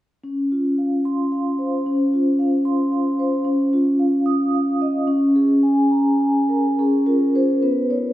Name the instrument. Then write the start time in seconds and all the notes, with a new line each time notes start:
vibraphone
0.24 C#4
0.52 F4
0.78 F5
1.05 C6
1.32 F5
1.59 C5
1.86 C#4
2.13 F4
2.39 F5
2.65 C6
2.92 F5
3.19 C5
3.45 C#4
3.73 F4
3.99 F5
4.26 D#6
4.54 F5
4.82 D#5
5.07 C#4
5.36 G#4
5.63 G#5
5.91 A#5
6.20 G#5
6.49 A#4
6.79 C#4 G#4
7.06 F4 A#4
7.35 F4 G#4 C5
7.63 B3 B4
7.90 D#4 C#5